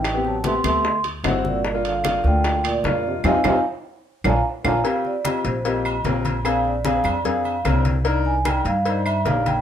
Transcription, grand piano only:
\new Staff \with { instrumentName = "Grand piano" } { \time 4/4 \key ees \major \tempo 4 = 150 r16 <ces' c' g'>8 r16 <ces' c' g'>16 r16 <ces' c' g'>8 r4 <c' fes' fis'>4 | r16 <bes d' f'>8 r16 <bes d' f'>16 r16 <bes d' f'>4 r8 <bes d' f'>4 | <c' ees' f'>8 <c' ees' f'>8 r4. <bes d' f'>8 r8 <bes d' f'>8 | <c' f' g'>8. r16 <c' f' g'>8. r16 <c' f' g'>8. r16 <c' f' bes'>8. r16 |
<c' d' aes'>8. r16 <c' d' aes'>8. r16 <c' d' aes'>8. r16 <c' d' bes'>8. r16 | <d' ees' bes'>8. r16 <d' ees' bes'>8. r16 <d' ees' c''>8. r16 <d' ees' bes'>8. r16 | }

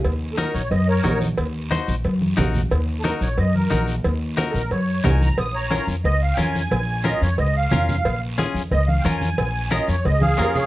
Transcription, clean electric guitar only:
\new Staff \with { instrumentName = "Clean electric guitar" } { \time 4/4 \key ees \dorian \tempo 4 = 180 r4 <ees' ges' bes'>8 r4. <ees' ges' bes'>8 r8 | r4 <ees' ges' c''>8 r4. <ees' ges' bes'>8 r8 | r4 <ees' ges' bes'>8 r4. <ees' ges' bes'>8 r8 | r4 <ees' ges' bes'>8 r4. <ees' ges' bes'>8 r8 |
r4 <des' f' bes'>8 r4. <des' f' bes'>8 r8 | r4 <des' f' bes'>8 r4. <des' f' bes'>8 r8 | r4 <des' f' aes'>8 r4. <des' f' bes'>8 r8 | r4 <des' f' bes'>8 r4. <des' f' bes'>8 r8 | }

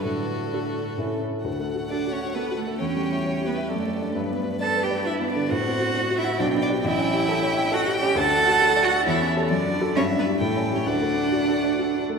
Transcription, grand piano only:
\new Staff \with { instrumentName = "Grand piano" } { \time 3/4 \key d \major \tempo 4 = 133 a,4 <d' fis' a'>4 <a, cis' e' a'>4 | \tuplet 3/2 { d,8 a8 fis'8 a'8 fis'8 fis''8 a'8 fis'8 a8 } | \tuplet 3/2 { e,8 g8 e'8 cis''8 g'8 e''8 fis,8 a8 <d' d''>8 } | \tuplet 3/2 { g,8 b8 d'8 d''8 b'8 d''8 d'8 b8 d8 } |
\tuplet 3/2 { a,8 c'8 fis'8 c''8 fis'8 fis''8 b,,8 b8 <g' d''>8 } | \tuplet 3/2 { a,,8 cis'8 g'8 a'8 cis''8 g''8 a'8 g'8 cis'8 } | \tuplet 3/2 { d,8 d'8 fis'8 a'8 d''8 fis''8 e,8 cis'8 <g' a'>8 } | \tuplet 3/2 { fis,8 d'8 <fis' a'>8 g,8 d'8 <e' g'>8 a,8 cis'8 <e' g'>8 } |
\tuplet 3/2 { d,8 a8 d'8 fis'8 a'8 d''8 fis'8 d'8 a8 } | }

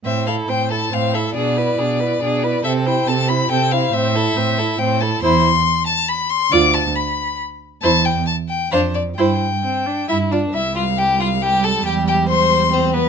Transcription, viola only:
\new Staff \with { instrumentName = "Viola" } { \time 3/4 \key a \minor \tempo 4 = 138 c'8 e'8 c'8 e'8 c'8 e'8 | d'8 e'8 d'8 e'8 d'8 e'8 | c'8 e'8 c'8 e'8 c'8 e'8 | c'8 e'8 c'8 e'8 c'8 e'8 |
\key c \major e'8 r2 r8 | f'8 r2 r8 | e'8 r4. d'8 r8 | e'8 r8 c'8 d'8 e'8 f'8 |
g2.~ | g2. | }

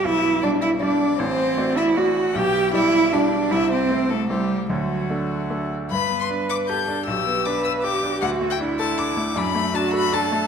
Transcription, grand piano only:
\new Staff \with { instrumentName = "Grand piano" } { \time 3/4 \key g \major \tempo 4 = 155 <b,, b,>4 <g g' d''>4 <g g' d''>4 | <a,, a,>4 <a fis' d''>4 <a fis' d''>4 | <b,, b,>4 <g g' d''>4 <g g' d''>4 | <c, c>4 <a e' c''>4 <a e' c''>4 |
<d, d>4 <a d' a'>4 <a d' a'>4 | g,8 b8 d'8 b'8 g'8 d'8 | b,,8 b8 d'8 b'8 g'8 d'8 | d,8 a8 d'8 a'8 d'8 a8 |
fis,8 a8 d'8 a'8 d'8 a8 | }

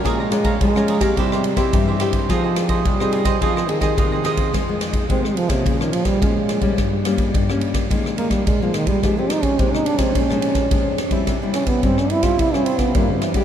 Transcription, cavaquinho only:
\new Staff \with { instrumentName = "Cavaquinho" } { \time 4/4 \key f \minor \tempo 4 = 107 <aes' des'' f'' bes''>16 <des'' f'' bes''>16 r16 <des'' f'' bes''>8 <des'' f'' bes''>16 <aes' des'' f'' bes''>16 <des'' f'' bes''>16 <e' g' c'' e''>16 <g' c'' e''>16 r16 <g' c'' e''>16 <e' g' c'' e''>16 <g' c'' e''>16 <e' g' c'' e''>8 | <f' aes' c'' ees''>16 <aes' c'' ees''>16 r16 <aes' c'' ees''>8 <aes' c'' ees''>16 <f' aes' c'' ees''>16 <aes' c'' ees''>16 <f' aes' c'' ees''>16 <aes' c'' ees''>16 r16 <aes' c'' ees''>16 <f' aes' c'' ees''>16 <aes' c'' ees''>16 <f' aes' c'' ees''>8 | r1 | r1 |
r1 | r1 | }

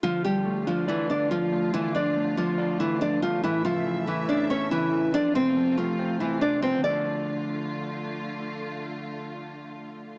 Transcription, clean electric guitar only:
\new Staff \with { instrumentName = "Clean electric guitar" } { \clef bass \time 4/4 \key d \minor \tempo 4 = 141 d8 f8 a8 d'8 d''8 d8 f8 a8 | d8 f8 a8 d'8 d''8 d8 f8 a8 | a,8 cis8 e8 a8 cis'8 a,8 cis8 e8 | f,8 c8 f8 a8 c'8 f,8 c8 f8 |
<d f a d'>1~ | <d f a d'>1 | }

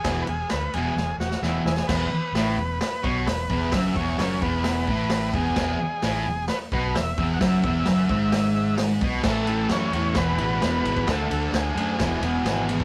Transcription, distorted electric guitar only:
\new Staff \with { instrumentName = "Distorted electric guitar" } { \clef bass \time 4/4 \key e \mixolydian \tempo 4 = 130 <e, b, e>8 r4 <e, b, e>8 r4 <e, b, e>8 r8 | e,8 r8 a,8 e,8 r8 b,8 e,8 e,8 | fis,8 e,8 fis,8 e,4 a,4 e,8 | e,8 r8 a,8 e,8 r8 b,8 e,8 e,8 |
fis,8 e,8 fis,8 gis,2 b,8 | <a, e a>8 <e a>8 <a, e a>8 <a, e a>8 <e, b, e>8 <e, b, e>8 <e, b, e>8 <b, e>8 | <d a d'>8 <a d'>8 <d a d'>8 <d a d'>8 <e, b, e>8 <e, b, e>8 <e, b, e>8 <b, e>8 | }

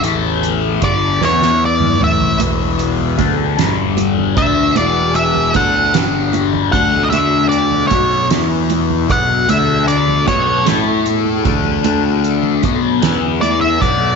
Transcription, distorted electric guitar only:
\new Staff \with { instrumentName = "Distorted electric guitar" } { \clef bass \time 6/8 \key d \lydian \tempo 4. = 51 <a, e a>4 <g, d g>8 <e b e'>4 <a, e a>8 | <e, b, e>4 <d a d'>8 <g, d g>4 <d a d'>8 | <e, b, e>4 <d a d'>8 <g, d g>4 <d a d'>8 | <d a d'>4 <b, fis b>8 <e b e'>4 <b, fis b>8 |
<d a d'>4 <b, fis b>8 <a e' a'>4 <d a d'>8 | <d a d'>4 <b, fis b>8 <e b e'>4 <b, fis b>8 | }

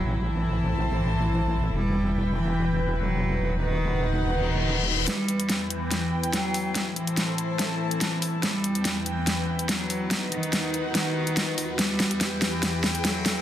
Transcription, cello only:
\new Staff \with { instrumentName = "Cello" } { \clef bass \time 4/4 \key e \minor \tempo 4 = 143 fis8 e4. e2 | g4. e4. fis4~ | fis8 dis4. dis2 | g4. e4. fis4~ |
fis8 e4. e2 | g4. e4. fis4~ | fis8 dis4. dis2 | g4. e4. fis4 | }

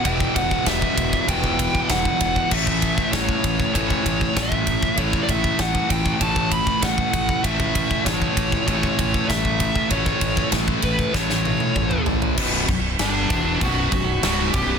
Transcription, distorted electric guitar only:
\new Staff \with { instrumentName = "Distorted electric guitar" } { \clef bass \time 4/4 \key a \mixolydian \tempo 4 = 97 <e, b, e>2 <e, b, e>2 | <a, e a>2 <a, e a>2 | <a, e a>2 <a, e a>2 | <a, e a>2 <a, e a>2 |
<a, e a>2 <a, e a>2 | <b,, fis, b,>8 <b,, fis,>8 <g, d g>8 <e, b, e>8 <b,, fis, b,>8 <b,, fis,>8 <cis, gis, cis>8 <b,, fis, b,>8 | }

